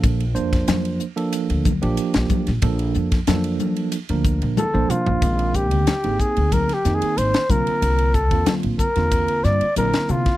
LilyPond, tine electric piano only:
\new Staff \with { instrumentName = "Tine electric piano" } { \time 4/4 \key bes \major \tempo 4 = 92 <f bes d' a'>16 r16 <f bes d' c''>4 r16 <f bes d' a'>8. r16 <f bes d' g'>4 r16 | <f bes d' a'>8. r16 <f bes d' a'>4 r16 <f bes d' bes'>8. r16 <f bes d' c''>8. | \key bes \mixolydian <ees aes bes c'>4 r16 <bes c' ees' aes'>4 r16 <ees bes c' ees'>8. r16 <d bes c' f'>8~ | <d bes c' f'>8 r16 <d bes c' f'>8. r16 <d bes c' f'>4 r16 <d bes c' e'>8. r16 | }